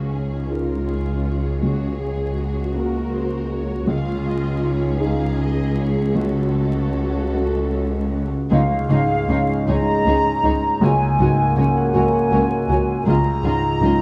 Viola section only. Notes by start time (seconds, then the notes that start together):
Already playing: C#4
0.50 F4
1.62 F#4
2.00 G#4
2.38 F#4
3.87 F4
5.00 G#4
6.16 F#4
8.51 D#4
8.90 D#4
9.30 D#4
9.69 D#4
10.07 D#4
10.44 D#4
10.81 F#4
11.20 F#4
11.58 F#4
11.96 F#4
12.32 F#4
12.70 F#4
13.07 F4
13.44 F4
13.82 F4